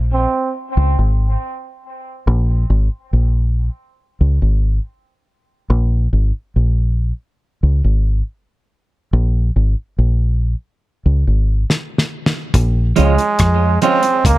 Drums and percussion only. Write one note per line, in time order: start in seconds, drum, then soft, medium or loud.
11.70 snare medium
11.98 snare medium
12.26 snare loud
12.54 kick loud
12.54 closed hi-hat loud
12.96 closed hi-hat medium
13.18 closed hi-hat medium
13.39 kick loud
13.39 cross-stick loud
13.39 closed hi-hat medium
13.82 closed hi-hat medium
14.03 closed hi-hat medium
14.25 kick loud
14.25 closed hi-hat medium